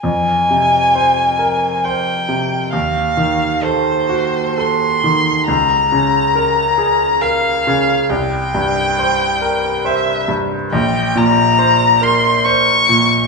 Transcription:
X:1
M:3/4
L:1/8
Q:1/4=68
K:Fm
V:1 name="Violin"
a4 g2 | f2 c2 c'2 | b4 f2 | g4 =e z |
g b2 c' d'2 |]
V:2 name="Grand piano"
F,, C, c B c C, | E,, E, =A _G A E, | D,, D, B A B D, | C,, G,, c B c G,, |
B,,, B,, c B c B,, |]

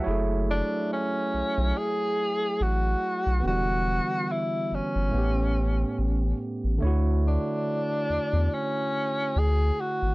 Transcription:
X:1
M:4/4
L:1/16
Q:"Swing 16ths" 1/4=71
K:F#m
V:1 name="Tenor saxophone"
z2 D2 C4 G4 F4 | F4 E2 C8 z2 | z2 D6 C4 G2 F2 |]
V:2 name="Tine electric piano"
e z12 z3 | z16 | z16 |]
V:3 name="Tine electric piano"
[F,A,EGc]16 | [D,E,=G,B,F]8 [A,,A,B,C=G]8 | [D,A,EFc]16 |]
V:4 name="Analog synth bass" clef=bass
F,,,3 z3 B,,, B,,, z4 A,,,2 z B,,, | E,,,3 z3 =G,,, G,,, A,,,4 A,,,2 z A,,, | D,,3 z3 E,, E,, z4 D,,2 z G,,, |]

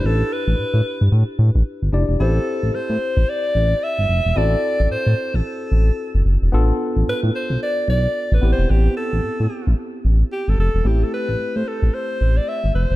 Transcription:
X:1
M:4/4
L:1/16
Q:"Swing 16ths" 1/4=111
K:Am
V:1 name="Alto saxophone"
A2 B6 z8 | A4 c4 d4 e4 | d4 c3 A6- A z2 | z4 B2 c2 d2 d2- (3d2 B2 c2 |
G2 A6 z4 G A A2 | G A B3 c A2 c3 d e2 c2 |]
V:2 name="Tine electric piano"
[DEGB]12- [DEGB]2 [DEGd]2 | [CEGc]16 | [CE^FA]16 | [B,DFA]12- [B,DFA]2 [B,CEG]2- |
[B,CEG]12- [B,CEG]2 z2 | [A,CEG]16 |]
V:3 name="Analog synth bass" clef=bass
A,,,2 z A,,, A,, A,, z G,, A,, z A,, A,,, z G,,, F,,, E,,, | A,,,2 z A,,, A,, A,, z A,,, z2 A,,,2 z G,,, F,,, E,,, | A,,,2 z A,,, A,, A,, z A,,, z2 A,,,2 z ^F,,, F,,, E,,, | A,,,2 z A,,, A,, A,, z B,,, z2 B,,,2 z A,,, A,,, E,,, |
A,,,2 z A,,, A,, A,, z A,,, z2 A,,,2 z G,,, F,,, E,,, | A,,,2 z A,,, A,, A,, z A,,, z2 A,,,2 z G,,, F,,, E,,, |]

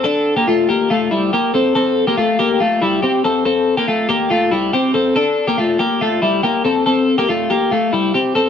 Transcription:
X:1
M:4/4
L:1/16
Q:1/4=141
K:F
V:1 name="Clean electric guitar"
[DA]3 [B,G] [A,F]2 [B,G]2 [A,F]2 [G,E]2 [B,G]2 [CA]2 | [CA]3 [B,G] [A,F]2 [B,G]2 [A,F]2 [G,E]2 [CG]2 [CA]2 | [CA]3 [B,G] [A,F]2 [B,G]2 [A,F]2 [G,E]2 [CG]2 [CA]2 | [DA]3 [B,G] [A,F]2 [B,G]2 [A,F]2 [G,E]2 [B,G]2 [CA]2 |
[CA]3 [B,G] [A,F]2 [B,G]2 [A,F]2 [G,E]2 [CG]2 [CA]2 |]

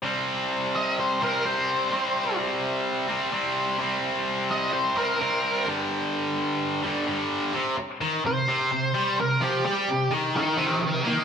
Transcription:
X:1
M:4/4
L:1/8
Q:1/4=128
K:Gdor
V:1 name="Lead electric guitar"
z3 _e c B c2- | c2 z6 | z3 _e c B B2 | z8 |
z3 c4 B | G G2 z [B_e] [Be] [Be] [eg] |]
V:2 name="Distorted electric guitar" clef=bass
[C,G,C]4- [C,G,C] [C,G,C] [C,G,C]2 | [C,G,C]4- [C,G,C] [C,G,C] [C,G,C]2 | [C,G,C]4- [C,G,C] [C,G,C] [C,G,C]2 | [G,,D,G,]4- [G,,D,G,] [G,,D,G,] [G,,D,G,]2 |
C, z _E, C, C, C, G, C, | F, G, C, _E,2 C, C, B, |]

